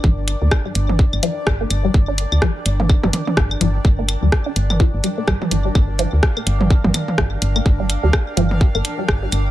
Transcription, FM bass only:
X:1
M:4/4
L:1/16
Q:"Swing 16ths" 1/4=126
K:Gm
V:1 name="FM bass" clef=bass
G,,,3 D,, z2 G,,,3 G,,, z2 G,,, z G,,, z | G,,,3 D,, z2 G,,,3 G,,, z2 G,,, z G,,, z | G,,,3 D,, z2 G,,,3 G,,, z2 G,,, z G,,, z | G,,,3 D,, z2 G,,,3 G,,, z2 G,,, z G,,, z |
G,,,3 D,, z2 G,,,3 G,,, z2 G,,, z G,,, z |]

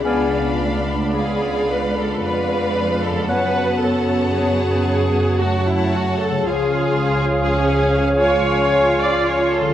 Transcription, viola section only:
X:1
M:3/4
L:1/16
Q:1/4=56
K:C#phr
V:1 name="Viola section"
D4 G2 B A B3 A | B2 A2 G4 F E F A | G6 c3 d c A |]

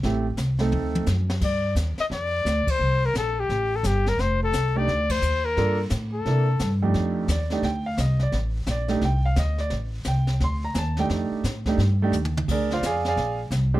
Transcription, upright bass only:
X:1
M:4/4
L:1/8
Q:"Swing" 1/4=174
K:Fmix
V:1 name="Upright bass" clef=bass
A,,,2 C,,2 D,,2 ^F,,2 | G,,2 E,, z F,,2 D,, z | C,,2 B,,,2 A,,,2 G,,,2 | F,,,2 C,,2 D,,2 E,,2 |
G,,2 A,,2 C,2 G,,2 | F,,2 E,,2 D,,2 C,,2 | A,,,2 B,,,2 C,,2 D,,2 | A,,,2 C,,2 D,,2 E,,2 |
F,, z A,,2 G,,2 E,,2 | D,,2 F,,2 B,,,2 C,,2 |]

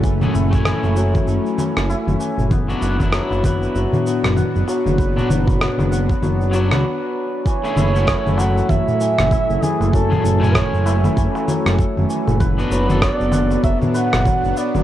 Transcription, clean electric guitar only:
X:1
M:4/4
L:1/16
Q:"Swing 16ths" 1/4=97
K:F#m
V:1 name="Clean electric guitar"
[A,CEF] [A,CEG] z [A,CEg]12- [A,CEg] | z [F,B,DF]2 [F,B,DE]12- [F,B,DE]- | [F,B,DE] [F,B,DF] z8 [F,B,DF]2 z4 | z [A,CEG]2 [A,CEF]12- [A,CEF]- |
[A,CEF] [A,CEG] z [A,CEg]12- [A,CEg] | z [B,DFB]2 [B,DFA]12- [B,DFA] |]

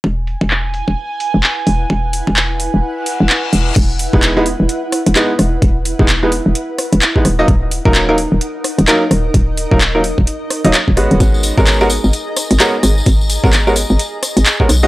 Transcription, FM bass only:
X:1
M:4/4
L:1/16
Q:"Swing 16ths" 1/4=129
K:Elyd
V:1 name="FM bass" clef=bass
E,,,3 E,,,4 E,,, z3 E,,, z2 E,,, z | E,,,3 E,,,4 E,,, z3 E,,, z2 E,,, z | E,,,3 E,,,4 E,,, z3 E,,, z2 E,,, z | E,,,3 E,,,4 E,,, z3 E,,, z2 D,,, z |
D,,,3 D,,,4 D,,, z3 D,,, z2 D,,, z | D,,,3 D,,,4 D,,, z3 D,,, z D,,, G,,, D,,, | G,,,3 G,,,4 G,,, z3 G,,, z2 G,,, z | G,,,3 G,,,4 G,,, z3 G,,, z2 B,,, z |]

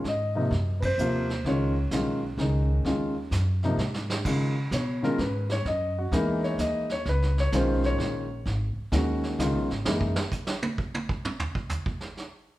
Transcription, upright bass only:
X:1
M:3/4
L:1/8
Q:"Swing" 1/4=129
K:Dbmix
V:1 name="Upright bass" clef=bass
A,,2 G,,2 E,,2 | D,,2 C,,2 D,,2 | E,,2 G,,2 A,,2 | D,2 C,2 A,,2 |
G,,2 _F,,2 E,,2 | D,,2 C,,2 B,,,2 | A,,, z E,,2 (3D,, C,, A,,, | G,, z4 z |
z6 |]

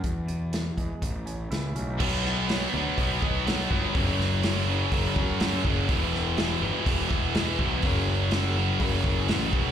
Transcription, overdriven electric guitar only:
X:1
M:4/4
L:1/8
Q:1/4=124
K:F#phr
V:1 name="Overdriven electric guitar" clef=bass
z8 | [B,,F,B,]2 [B,,F,B,] [B,,F,B,] [B,,F,B,]2 [B,,F,B,] [B,,F,B,] | [F,,C,F,]2 [F,,C,F,] [F,,C,F,] [F,,C,F,]2 [F,,C,F,] [F,,C,F,] | [E,,B,,E,]2 [E,,B,,E,] [E,,B,,E,] [E,,B,,E,]2 [E,,B,,E,] [E,,B,,E,] |
[F,,C,F,]2 [F,,C,F,] [F,,C,F,] [F,,C,F,]2 [F,,C,F,] [F,,C,F,] |]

